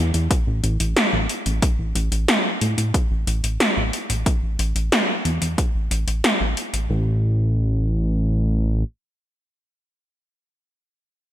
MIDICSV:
0, 0, Header, 1, 3, 480
1, 0, Start_track
1, 0, Tempo, 659341
1, 1183, Time_signature, 4, 2, 24, 8
1, 8241, End_track
2, 0, Start_track
2, 0, Title_t, "Analog synth bass"
2, 0, Program_c, 0, 38
2, 0, Note_on_c, 0, 40, 92
2, 87, Note_off_c, 0, 40, 0
2, 103, Note_on_c, 0, 40, 80
2, 208, Note_off_c, 0, 40, 0
2, 343, Note_on_c, 0, 33, 77
2, 447, Note_off_c, 0, 33, 0
2, 463, Note_on_c, 0, 33, 93
2, 567, Note_off_c, 0, 33, 0
2, 583, Note_on_c, 0, 33, 78
2, 687, Note_off_c, 0, 33, 0
2, 822, Note_on_c, 0, 33, 72
2, 927, Note_off_c, 0, 33, 0
2, 1063, Note_on_c, 0, 33, 79
2, 1167, Note_off_c, 0, 33, 0
2, 1302, Note_on_c, 0, 33, 75
2, 1407, Note_off_c, 0, 33, 0
2, 1422, Note_on_c, 0, 33, 92
2, 1527, Note_off_c, 0, 33, 0
2, 1542, Note_on_c, 0, 33, 78
2, 1647, Note_off_c, 0, 33, 0
2, 1903, Note_on_c, 0, 45, 88
2, 2007, Note_off_c, 0, 45, 0
2, 2022, Note_on_c, 0, 45, 79
2, 2127, Note_off_c, 0, 45, 0
2, 2262, Note_on_c, 0, 33, 72
2, 2367, Note_off_c, 0, 33, 0
2, 2382, Note_on_c, 0, 33, 92
2, 2487, Note_off_c, 0, 33, 0
2, 2502, Note_on_c, 0, 33, 75
2, 2607, Note_off_c, 0, 33, 0
2, 2742, Note_on_c, 0, 33, 74
2, 2847, Note_off_c, 0, 33, 0
2, 2982, Note_on_c, 0, 33, 78
2, 3087, Note_off_c, 0, 33, 0
2, 3222, Note_on_c, 0, 33, 73
2, 3327, Note_off_c, 0, 33, 0
2, 3342, Note_on_c, 0, 33, 90
2, 3447, Note_off_c, 0, 33, 0
2, 3462, Note_on_c, 0, 33, 78
2, 3567, Note_off_c, 0, 33, 0
2, 3822, Note_on_c, 0, 40, 93
2, 3927, Note_off_c, 0, 40, 0
2, 3942, Note_on_c, 0, 40, 79
2, 4047, Note_off_c, 0, 40, 0
2, 4183, Note_on_c, 0, 33, 74
2, 4287, Note_off_c, 0, 33, 0
2, 4302, Note_on_c, 0, 33, 92
2, 4407, Note_off_c, 0, 33, 0
2, 4423, Note_on_c, 0, 33, 73
2, 4527, Note_off_c, 0, 33, 0
2, 4662, Note_on_c, 0, 33, 73
2, 4767, Note_off_c, 0, 33, 0
2, 4903, Note_on_c, 0, 33, 77
2, 5007, Note_off_c, 0, 33, 0
2, 5023, Note_on_c, 0, 33, 89
2, 6434, Note_off_c, 0, 33, 0
2, 8241, End_track
3, 0, Start_track
3, 0, Title_t, "Drums"
3, 103, Note_on_c, 9, 42, 64
3, 176, Note_off_c, 9, 42, 0
3, 223, Note_on_c, 9, 36, 109
3, 223, Note_on_c, 9, 42, 90
3, 296, Note_off_c, 9, 36, 0
3, 296, Note_off_c, 9, 42, 0
3, 463, Note_on_c, 9, 42, 65
3, 536, Note_off_c, 9, 42, 0
3, 583, Note_on_c, 9, 42, 67
3, 656, Note_off_c, 9, 42, 0
3, 703, Note_on_c, 9, 38, 117
3, 703, Note_on_c, 9, 42, 90
3, 776, Note_off_c, 9, 38, 0
3, 776, Note_off_c, 9, 42, 0
3, 943, Note_on_c, 9, 42, 64
3, 1016, Note_off_c, 9, 42, 0
3, 1063, Note_on_c, 9, 42, 64
3, 1136, Note_off_c, 9, 42, 0
3, 1182, Note_on_c, 9, 36, 118
3, 1182, Note_on_c, 9, 42, 84
3, 1255, Note_off_c, 9, 36, 0
3, 1255, Note_off_c, 9, 42, 0
3, 1423, Note_on_c, 9, 42, 65
3, 1496, Note_off_c, 9, 42, 0
3, 1543, Note_on_c, 9, 42, 66
3, 1616, Note_off_c, 9, 42, 0
3, 1663, Note_on_c, 9, 38, 120
3, 1663, Note_on_c, 9, 42, 88
3, 1736, Note_off_c, 9, 38, 0
3, 1736, Note_off_c, 9, 42, 0
3, 1903, Note_on_c, 9, 42, 65
3, 1976, Note_off_c, 9, 42, 0
3, 2024, Note_on_c, 9, 42, 63
3, 2097, Note_off_c, 9, 42, 0
3, 2142, Note_on_c, 9, 36, 114
3, 2143, Note_on_c, 9, 42, 89
3, 2215, Note_off_c, 9, 36, 0
3, 2216, Note_off_c, 9, 42, 0
3, 2383, Note_on_c, 9, 42, 64
3, 2456, Note_off_c, 9, 42, 0
3, 2503, Note_on_c, 9, 42, 65
3, 2576, Note_off_c, 9, 42, 0
3, 2623, Note_on_c, 9, 38, 116
3, 2623, Note_on_c, 9, 42, 88
3, 2696, Note_off_c, 9, 38, 0
3, 2696, Note_off_c, 9, 42, 0
3, 2864, Note_on_c, 9, 42, 63
3, 2936, Note_off_c, 9, 42, 0
3, 2983, Note_on_c, 9, 42, 63
3, 3056, Note_off_c, 9, 42, 0
3, 3103, Note_on_c, 9, 36, 114
3, 3103, Note_on_c, 9, 42, 78
3, 3176, Note_off_c, 9, 36, 0
3, 3176, Note_off_c, 9, 42, 0
3, 3343, Note_on_c, 9, 42, 62
3, 3416, Note_off_c, 9, 42, 0
3, 3464, Note_on_c, 9, 42, 58
3, 3537, Note_off_c, 9, 42, 0
3, 3584, Note_on_c, 9, 38, 118
3, 3584, Note_on_c, 9, 42, 84
3, 3657, Note_off_c, 9, 38, 0
3, 3657, Note_off_c, 9, 42, 0
3, 3824, Note_on_c, 9, 42, 60
3, 3897, Note_off_c, 9, 42, 0
3, 3944, Note_on_c, 9, 42, 58
3, 4017, Note_off_c, 9, 42, 0
3, 4063, Note_on_c, 9, 36, 109
3, 4064, Note_on_c, 9, 42, 83
3, 4136, Note_off_c, 9, 36, 0
3, 4136, Note_off_c, 9, 42, 0
3, 4304, Note_on_c, 9, 42, 60
3, 4377, Note_off_c, 9, 42, 0
3, 4424, Note_on_c, 9, 42, 60
3, 4496, Note_off_c, 9, 42, 0
3, 4544, Note_on_c, 9, 38, 112
3, 4544, Note_on_c, 9, 42, 82
3, 4617, Note_off_c, 9, 38, 0
3, 4617, Note_off_c, 9, 42, 0
3, 4784, Note_on_c, 9, 42, 60
3, 4857, Note_off_c, 9, 42, 0
3, 4904, Note_on_c, 9, 42, 57
3, 4977, Note_off_c, 9, 42, 0
3, 8241, End_track
0, 0, End_of_file